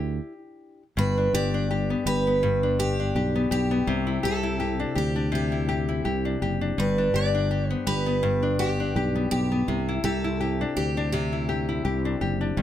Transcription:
0.00 0.18 D2 medium
0.00 0.82 D4 medium
0.00 0.32 E4 medium
0.00 0.21 G4 medium
0.00 0.82 G4 medium
0.97 1.27 G1 loud
0.97 2.42 G2 medium
0.97 1.34 B4 medium
1.18 1.54 D4 medium
1.33 1.93 G1 medium
1.33 1.70 G4 medium
1.33 2.03 D5 medium
1.54 2.63 D4 medium
1.71 2.06 G4 medium
1.90 2.26 B3 medium
2.05 3.11 G1 medium
2.05 2.79 G4 medium
2.05 2.79 B4 loud
2.27 3.34 B3 medium
2.43 3.96 G2 medium
2.63 2.99 D4 medium
2.79 3.15 G4 medium
2.79 3.48 G4 medium
3.00 4.06 D4 medium
3.15 3.45 B1 medium
3.15 3.51 G4 medium
3.35 3.70 B3 medium
3.51 3.81 B1 medium
3.51 4.23 G4 medium
3.51 4.25 G4 medium
3.71 3.96 B3 medium
3.87 4.17 C2 loud
3.87 5.31 C3 medium
4.07 4.42 E4 medium
4.23 4.83 C2 medium
4.23 4.59 G4 medium
4.23 4.93 A4 medium
4.43 5.51 E4 medium
4.60 4.95 G4 medium
4.80 5.15 D4 medium
4.95 6.01 D2 medium
4.95 5.68 G4 medium
4.95 5.34 G4 medium
5.16 6.25 D4 medium
5.32 6.85 C3 medium
5.32 6.39 G4 medium
5.52 5.87 E4 medium
5.69 6.04 G4 medium
5.89 6.86 E4 medium
6.05 6.35 C2 medium
6.05 6.42 G4 medium
6.25 6.61 D4 medium
6.42 6.71 F#1 medium
6.42 7.14 G4 medium
6.61 6.98 D4 medium
6.78 7.08 G1 loud
6.78 8.22 G2 medium
6.78 7.15 B4 medium
6.98 7.34 D4 medium
7.14 7.73 G1 loud
7.14 7.50 G4 medium
7.14 7.71 D5 loud
7.35 8.42 D4 medium
7.51 7.86 G4 medium
7.71 8.05 B3 medium
7.71 7.87 C5 loud
7.87 8.91 G1 medium
7.87 8.59 G4 medium
7.87 8.59 B4 loud
8.06 9.14 B3 medium
8.23 9.76 G2 medium
8.43 8.79 D4 medium
8.59 9.30 G4 medium
8.59 8.96 G4 medium
8.80 9.88 D4 medium
8.95 9.25 B1 medium
8.95 9.31 G4 medium
9.15 9.50 B3 medium
9.31 9.61 B1 medium
9.31 10.00 G4 medium
9.31 10.04 G4 medium
9.52 9.76 B3 medium
9.68 9.98 C2 loud
9.68 11.12 C3 medium
9.89 10.23 E4 medium
10.04 10.63 C2 loud
10.04 10.40 G4 medium
10.04 10.76 A4 medium
10.24 11.31 E4 medium
10.40 10.76 G4 medium
10.61 10.97 D4 medium
10.76 11.81 D2 medium
10.76 11.11 G4 medium
10.76 11.48 G4 medium
10.97 12.05 D4 medium
11.12 12.62 C3 medium
11.12 12.17 G4 medium
11.33 11.67 E4 soft
11.49 11.84 G4 medium
11.69 12.62 E4 medium
11.85 12.14 C2 medium
11.85 12.21 G4 medium
12.05 12.40 D4 medium
12.21 12.51 F#1 medium
12.21 12.62 G4 medium
12.41 12.62 D4 medium
12.57 12.62 G1 loud
12.57 12.62 G2 medium

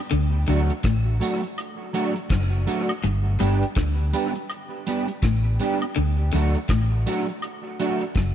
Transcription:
0.11 0.46 D2 loud
0.11 0.33 D3 medium
0.11 closed hi-hat medium
0.47 0.69 D2 medium
0.47 0.61 D3 medium
0.47 0.70 F#3 medium
0.47 0.71 A3 medium
0.47 0.71 D4 medium
0.47 0.71 F#4 medium
0.47 closed hi-hat medium
0.47 tambourine soft
0.70 closed hi-hat medium
0.84 1.19 A1 medium
0.84 1.07 A2 medium
0.84 kick loud
0.84 cross-stick loud
0.84 closed hi-hat medium
1.20 1.43 F#3 medium
1.20 1.43 A3 medium
1.20 1.42 D4 medium
1.20 1.42 F#4 medium
1.20 closed hi-hat medium
1.20 tambourine medium
1.43 muted clean electric guitar stroke soft
1.43 closed hi-hat soft
1.58 closed hi-hat medium
1.58 high woodblock medium
1.93 2.17 F#3 medium
1.93 2.16 A3 medium
1.93 2.15 D4 medium
1.93 2.15 F#4 loud
1.93 closed hi-hat medium
1.93 tambourine soft
2.16 muted clean electric guitar stroke soft
2.16 closed hi-hat medium
2.30 2.65 F#1 medium
2.30 2.53 F#2 medium
2.30 kick loud
2.30 cross-stick loud
2.30 closed hi-hat medium
2.66 2.90 F#3 medium
2.66 2.90 A3 medium
2.66 2.90 D4 medium
2.66 2.90 F#4 medium
2.66 closed hi-hat medium
2.66 tambourine medium
2.89 closed hi-hat medium
2.89 high woodblock medium
3.03 3.39 G1 loud
3.03 3.26 G2 loud
3.03 closed hi-hat medium
3.39 3.62 G1 loud
3.39 3.54 G2 medium
3.39 3.63 G3 medium
3.39 3.63 B3 medium
3.39 3.63 D4 medium
3.39 3.63 G4 medium
3.39 closed hi-hat medium
3.39 tambourine soft
3.62 closed hi-hat medium
3.76 4.12 D2 medium
3.76 3.99 D3 medium
3.76 kick loud
3.76 cross-stick loud
3.76 closed hi-hat medium
4.13 4.36 G3 medium
4.13 4.35 B3 medium
4.13 4.34 D4 medium
4.13 4.34 G4 medium
4.13 closed hi-hat medium
4.13 tambourine medium
4.35 muted clean electric guitar stroke soft
4.35 closed hi-hat soft
4.49 closed hi-hat medium
4.49 high woodblock medium
4.86 5.10 G3 medium
4.86 5.09 B3 medium
4.86 5.08 D4 medium
4.86 5.08 G4 medium
4.86 closed hi-hat medium
4.86 tambourine soft
5.08 muted clean electric guitar stroke soft
5.08 closed hi-hat medium
5.23 5.58 A1 medium
5.23 5.45 A2 medium
5.23 kick loud
5.23 cross-stick loud
5.23 closed hi-hat medium
5.59 5.83 G3 medium
5.59 5.83 B3 medium
5.59 5.83 D4 medium
5.59 5.83 G4 medium
5.59 closed hi-hat medium
5.59 tambourine medium
5.82 closed hi-hat medium
5.82 high woodblock medium
5.95 6.32 D2 loud
5.95 6.18 D3 medium
5.95 closed hi-hat medium
6.32 6.55 D2 medium
6.32 6.46 D3 medium
6.32 6.56 F#3 medium
6.32 6.57 A3 medium
6.32 6.57 D4 medium
6.32 6.57 F#4 medium
6.32 closed hi-hat medium
6.32 tambourine soft
6.55 closed hi-hat medium
6.69 7.04 A1 medium
6.69 6.92 A2 medium
6.69 kick loud
6.69 cross-stick loud
6.69 closed hi-hat medium
6.69 high woodblock medium
7.06 7.29 F#3 medium
7.06 7.28 A3 medium
7.06 7.28 D4 medium
7.06 7.28 F#4 medium
7.06 closed hi-hat medium
7.06 tambourine medium
7.28 muted clean electric guitar stroke soft
7.28 closed hi-hat soft
7.42 closed hi-hat medium
7.42 high woodblock medium
7.79 8.02 F#3 medium
7.79 8.02 A3 medium
7.79 8.03 D4 medium
7.79 8.03 F#4 medium
7.79 closed hi-hat medium
7.79 tambourine soft
8.01 closed hi-hat soft
8.16 8.35 F#1 medium
8.16 8.35 F#2 medium
8.16 kick loud
8.16 cross-stick loud
8.16 closed hi-hat medium

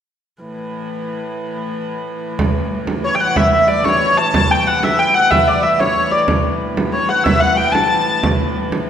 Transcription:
0.42 2.40 A2 medium
0.42 2.40 E3 medium
2.39 6.29 A2 medium
2.39 6.29 E3 medium
2.39 frame drum medium
2.71 frame drum soft
2.87 frame drum medium
3.05 3.16 C#5 medium
3.15 3.20 G5 medium
3.20 3.37 F#5 medium
3.36 3.52 E5 medium
3.36 frame drum medium
3.52 3.68 E5 medium
3.68 3.85 D5 medium
3.68 frame drum soft
3.84 4.18 C#5 medium
3.84 frame drum medium
4.18 4.34 A5 medium
4.34 4.51 A5 loud
4.34 frame drum medium
4.51 4.67 G5 medium
4.67 4.84 F#5 medium
4.67 frame drum soft
4.83 4.99 E5 medium
4.83 frame drum medium
4.99 5.15 G5 medium
5.14 5.31 F#5 medium
5.31 5.48 E5 medium
5.31 frame drum medium
5.48 5.63 D5 medium
5.63 5.80 E5 medium
5.79 6.12 C#5 medium
5.79 frame drum medium
5.97 frame drum soft
6.12 6.19 D5 medium
6.12 frame drum soft
6.28 8.90 A2 medium
6.28 8.90 E3 medium
6.28 frame drum medium
6.61 frame drum soft
6.77 frame drum medium
6.93 7.09 C#5 medium
7.09 7.26 F#5 medium
7.24 7.40 E5 medium
7.24 frame drum medium
7.40 7.58 F#5 medium
7.57 7.73 G5 medium
7.57 frame drum soft
7.72 8.22 A5 medium
7.72 frame drum medium
8.23 frame drum medium
8.56 frame drum soft
8.72 frame drum medium

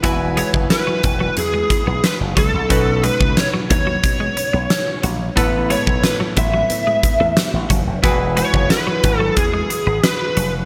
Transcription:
0.03 0.41 E1 medium
0.03 1.00 E3 medium
0.03 0.17 B3 medium
0.03 2.66 E4 medium
0.03 2.66 F#4 medium
0.03 2.67 B4 medium
0.03 2.67 G#5 medium
0.03 kick medium
0.03 closed hi-hat medium
0.37 0.50 G#3 medium
0.37 0.47 C#5 medium
0.37 closed hi-hat medium
0.54 0.66 F#1 medium
0.54 muted clean electric guitar stroke soft
0.54 kick medium
0.70 1.34 B4 medium
0.70 snare loud
0.70 closed hi-hat medium
0.87 1.00 F#3 medium
1.03 1.29 E1 medium
1.03 muted clean electric guitar stroke soft
1.03 kick medium
1.03 closed hi-hat medium
1.21 1.34 F#3 medium
1.37 1.62 E2 loud
1.37 2.04 G#4 medium
1.37 closed hi-hat medium
1.54 1.67 G#3 medium
1.70 muted clean electric guitar stroke soft
1.70 kick medium
1.70 closed hi-hat medium
1.87 2.00 B1 medium
1.87 2.00 B3 medium
2.04 2.14 B4 medium
2.04 snare loud
2.04 closed hi-hat medium
2.21 2.33 F#1 medium
2.37 2.49 C#2 medium
2.37 2.50 F#3 medium
2.37 3.04 A4 medium
2.37 kick medium
2.37 closed hi-hat medium
2.54 2.66 C2 medium
2.69 3.08 B1 medium
2.69 3.66 B2 medium
2.69 2.84 B3 medium
2.69 5.33 C#4 medium
2.69 5.33 D#4 medium
2.69 5.33 F#4 medium
2.69 5.34 B4 medium
2.69 kick medium
2.69 closed hi-hat medium
3.04 3.17 G#3 medium
3.04 3.39 B4 medium
3.04 closed hi-hat medium
3.20 3.33 C#2 medium
3.20 muted clean electric guitar stroke soft
3.20 kick medium
3.37 3.47 C#5 medium
3.37 snare loud
3.37 closed hi-hat medium
3.54 3.67 F#3 medium
3.70 3.95 D#2 medium
3.70 5.00 C#5 medium
3.70 muted clean electric guitar stroke soft
3.70 kick medium
3.70 closed hi-hat medium
3.87 4.00 F#3 medium
4.04 4.29 B2 medium
4.04 kick medium
4.04 closed hi-hat medium
4.20 4.34 G#3 medium
4.37 muted clean electric guitar stroke soft
4.37 closed hi-hat medium
4.53 4.66 B1 medium
4.53 4.67 B3 medium
4.70 snare loud
4.70 closed hi-hat medium
5.03 5.29 A#1 medium
5.03 5.17 F#3 medium
5.03 closed hi-hat medium
5.36 5.74 A1 medium
5.36 6.33 A2 medium
5.36 5.50 A3 medium
5.36 7.99 B3 medium
5.36 7.99 E4 medium
5.36 8.00 A4 medium
5.36 8.00 B4 medium
5.36 kick loud
5.36 closed hi-hat medium
5.70 5.84 G#3 medium
5.70 6.04 C#5 medium
5.70 closed hi-hat medium
5.87 6.00 B1 medium
5.87 muted clean electric guitar stroke soft
5.87 kick medium
6.04 6.13 B4 medium
6.04 snare loud
6.04 closed hi-hat medium
6.20 6.34 F#3 medium
6.37 6.62 A1 medium
6.37 7.67 E5 medium
6.37 muted clean electric guitar stroke soft
6.37 kick medium
6.37 closed hi-hat medium
6.54 6.67 F#3 medium
6.70 6.95 A2 medium
6.70 closed hi-hat medium
6.87 7.00 G#3 medium
7.03 muted clean electric guitar stroke soft
7.03 kick medium
7.03 closed hi-hat medium
7.20 7.33 E2 medium
7.20 7.34 A3 medium
7.37 snare loud
7.37 closed hi-hat medium
7.54 7.66 A1 medium
7.70 7.83 F#1 medium
7.70 7.84 F#3 medium
7.70 kick medium
7.70 closed hi-hat medium
7.87 7.99 F1 medium
8.03 8.41 E1 medium
8.03 9.00 E3 medium
8.03 8.17 B3 medium
8.03 10.65 E4 medium
8.03 10.65 F#4 medium
8.03 10.65 G#4 medium
8.03 10.65 B4 medium
8.03 kick loud
8.03 closed hi-hat medium
8.37 8.50 G#3 medium
8.37 8.71 C#5 medium
8.37 closed hi-hat medium
8.54 8.66 F#1 medium
8.54 muted clean electric guitar stroke soft
8.54 kick medium
8.70 9.18 B4 medium
8.70 snare loud
8.70 closed hi-hat medium
8.87 9.00 F#3 medium
9.04 9.29 G#1 medium
9.04 muted clean electric guitar stroke soft
9.04 kick medium
9.04 closed hi-hat medium
9.18 9.34 F#3 medium
9.18 9.33 A4 medium
9.37 9.62 E2 medium
9.37 10.00 G#4 medium
9.37 kick medium
9.37 closed hi-hat medium
9.54 9.67 G#3 medium
9.70 muted clean electric guitar stroke soft
9.70 closed hi-hat medium
9.87 9.99 G#1 medium
9.87 10.00 B3 medium
10.04 10.51 B4 medium
10.04 snare loud
10.04 closed hi-hat medium
10.37 10.62 F1 medium
10.37 10.50 F#3 medium
10.37 closed hi-hat medium

